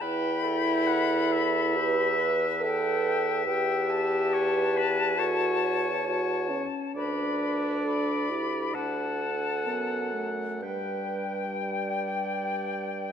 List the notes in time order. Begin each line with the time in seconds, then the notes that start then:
0.01 E2 E4 B4 G5 B5
0.44 A4
0.86 F#5
1.32 E5
1.77 G4 B4
2.20 B4
2.62 A4 E5 G5
3.46 E2 G4 B4 G5
3.90 A5
4.33 C#5
4.77 B4
5.17 F#4 A4 C#5
5.62 C#5
6.06 F#4 C#5
6.50 C#4
6.95 D2 D4 B4 D5 B5
7.85 A4 B5
8.30 E4 G4
8.74 D2 D4 A4 F#5 A5
9.65 F#2 B3
10.13 A3
10.62 G2 G3 B4 G5
11.62 D5